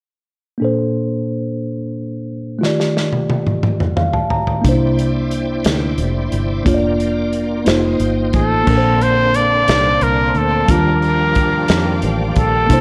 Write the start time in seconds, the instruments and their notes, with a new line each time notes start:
0.58 tine electric piano A#2 A#3 D4
0.62 tine electric piano A4 C5
2.59 tine electric piano D#3 A3 F4
2.63 tine electric piano G4 D5, snare
2.80 snare
2.97 snare
3.13 high tom
3.30 high tom
3.47 mid tom
3.63 mid tom
3.80 mid tom
3.97 tine electric piano F5, mid tom
4.14 tine electric piano A5, floor tom
4.30 tine electric piano A#5, floor tom
4.47 floor tom
4.61 fingered electric bass C2, tine electric piano C3 A#3 D4, tonewheel organ E4 D5 G5, kick, closed hi-hat
4.65 tine electric piano D#4 C5, tonewheel organ C5
4.73 tine electric piano E4
4.98 closed hi-hat
5.31 closed hi-hat
5.65 fingered electric bass D2, snare, closed hi-hat
5.98 fingered electric bass F1, closed hi-hat
6.32 fingered electric bass G1, closed hi-hat
6.65 fingered electric bass F1, tine electric piano A#3 D4 F4 C#5, tonewheel organ F4 A#4, kick, closed hi-hat
6.74 tine electric piano D5
7.00 closed hi-hat
7.33 closed hi-hat
7.65 fingered electric bass F1, tine electric piano A#3 D#4 F4 C5, tonewheel organ C5 D#5, snare, closed hi-hat
8.00 fingered electric bass G1, closed hi-hat
8.33 fingered electric bass A1, trumpet A4, kick, closed hi-hat
8.64 fingered electric bass A#1, tine electric piano A#2 A#3 D4, tonewheel organ D3 A#3 C4 C5, string section D5 F5 A5 C6, kick, crash
8.68 tine electric piano A#4 A5
8.78 tine electric piano C5
9.02 trumpet C5, closed hi-hat
9.34 trumpet D5, closed hi-hat
9.68 fingered electric bass C2, snare, closed hi-hat
10.01 fingered electric bass C2, trumpet A#4, closed hi-hat
10.34 fingered electric bass D2, trumpet A4, closed hi-hat
10.66 fingered electric bass D#2, tine electric piano D#3 F#3 D4, tonewheel organ F3 A#3 D4 G4, string section F5 G5 D6, kick, closed hi-hat
10.70 tine electric piano G3 F4 A5, trumpet A#4
11.02 closed hi-hat
11.35 kick, closed hi-hat
11.68 fingered electric bass F2, snare, closed hi-hat
12.02 fingered electric bass A1, closed hi-hat
12.35 fingered electric bass A#1, trumpet A4, kick, closed hi-hat
12.66 fingered electric bass C2, tine electric piano C3 A#3 D4, tonewheel organ D3 A#3 C4 E4, string section D5 E5 G5 C6, kick, closed hi-hat
12.71 tine electric piano E4 C5